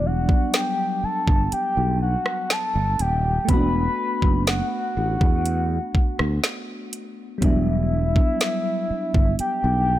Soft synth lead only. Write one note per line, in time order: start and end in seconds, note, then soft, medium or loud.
0.06 0.56 F#5 medium
0.55 1.06 G5 loud
1.04 1.53 A5 loud
1.53 1.98 G5 loud
2.02 2.53 F#5 loud
2.52 3.02 A5 loud
3.01 3.49 G5 loud
3.50 4.43 B5 loud
4.48 6.90 F#5 loud
7.44 9.36 E5 loud
9.40 9.99 G5 loud